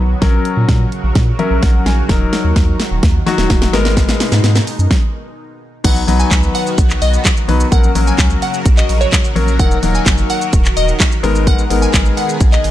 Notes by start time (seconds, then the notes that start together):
Already playing: D#3 F#3 B3 F#4
0.00 B1
0.21 A#1 C#3 F#3 C#4 A#4, kick, snare, closed hi-hat
0.45 closed hi-hat
0.57 A#2
0.69 A#2, kick, snare, closed hi-hat
0.92 closed hi-hat
1.04 A#1
1.15 A#2, kick, snare, closed hi-hat
1.39 F#3 C#4 A#4 E5, closed hi-hat
1.51 A#1
1.62 A#1 F#5, kick, snare, closed hi-hat
1.86 A#1 G#5, snare, closed hi-hat
2.09 D#1 D#3 F#3 D#4 A#4, kick, snare, closed hi-hat
2.33 snare, closed hi-hat
2.44 D#2
2.56 D#2, kick, snare, closed hi-hat
2.80 snare, closed hi-hat
2.91 D#1
3.03 D#2, kick, snare, closed hi-hat
3.26 F#3 D#4 F#4, snare, closed hi-hat
3.38 D#1, snare
3.50 D#1, kick, snare, closed hi-hat
3.62 snare
3.73 G#1 B2 G#3 B3 D#4 A#4, snare, closed hi-hat
3.85 snare
3.97 kick, snare, closed hi-hat, shaker
4.09 snare, shaker
4.20 snare, open hi-hat, shaker
4.32 G#2, snare, shaker
4.44 G#2, snare, closed hi-hat, shaker
4.55 snare, shaker
4.67 open hi-hat, shaker
4.79 F#2, shaker
4.91 kick, snare
5.84 B1 D#3 F#3 B3 D#4 F#4 B4 F#5, kick, closed hi-hat, crash, shaker
5.96 shaker
6.07 B1 F#3 B3 D#4 B4, open hi-hat, shaker
6.20 G#5, shaker
6.31 C#2, kick, snare, clap, closed hi-hat, shaker
6.43 shaker
6.55 F#5, open hi-hat, shaker
6.67 shaker
6.78 B1, kick, closed hi-hat, shaker
6.90 clap, shaker
7.02 B1 D#5, open hi-hat, shaker
7.14 shaker
7.25 kick, snare, clap, closed hi-hat, shaker
7.37 shaker
7.48 B1 F#3 B3 D#4 B4, open hi-hat, shaker
7.60 shaker
7.71 A#1 C#3 F#3 A#3 C#4 F#4 A#4 F#5, kick, closed hi-hat, shaker
7.84 shaker
7.95 A#1 F#3 A#3 C#4 A#4, open hi-hat, shaker
8.07 G#5, shaker
8.18 C#2, kick, snare, clap, closed hi-hat, shaker
8.30 shaker
8.42 F#5, open hi-hat, shaker
8.54 shaker
8.66 A#1, kick, closed hi-hat, shaker
8.77 D#5, clap, shaker
8.89 A#1, open hi-hat, shaker
9.01 C#5, shaker
9.12 kick, snare, clap, closed hi-hat, shaker
9.24 shaker
9.35 A#1 F#3 A#3 C#4 A#4, open hi-hat, shaker
9.48 shaker
9.59 D#1 D#3 F#3 A#3 D#4 A#4 F#5, kick, closed hi-hat, shaker
9.71 shaker
9.83 D#1 F#3 A#3 D#4 A#4, open hi-hat, shaker
9.95 G#5, shaker
10.06 F#1, kick, snare, clap, closed hi-hat, shaker
10.18 shaker
10.30 F#5, open hi-hat, shaker
10.41 shaker
10.53 D#1, kick, closed hi-hat, shaker
10.65 clap, shaker
10.77 D#1 D#5, open hi-hat, shaker
10.88 shaker
11.00 kick, snare, clap, closed hi-hat, shaker
11.12 shaker
11.23 G#1 G#3 B3 D#4 G#4 A#4, open hi-hat, shaker
11.35 shaker
11.47 F#5, kick, closed hi-hat, shaker
11.59 shaker
11.70 G#1 G#3 B3 D#4 A#4, open hi-hat, shaker
11.82 G#5, shaker
11.94 G#1, kick, snare, clap, closed hi-hat, shaker
12.05 shaker
12.17 F#5, open hi-hat, shaker
12.29 shaker
12.40 A#1, kick, closed hi-hat, shaker
12.52 D#5, clap, shaker
12.64 G#1, open hi-hat, shaker